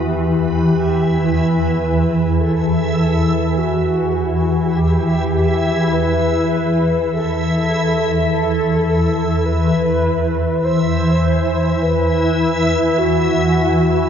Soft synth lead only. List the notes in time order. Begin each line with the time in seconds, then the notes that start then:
0.08 G4
1.25 B4
2.40 A4
3.58 F#4
4.76 G4
5.93 B4
7.12 A4
8.30 A4
9.46 B4
10.64 C5
11.82 B4
12.98 F#4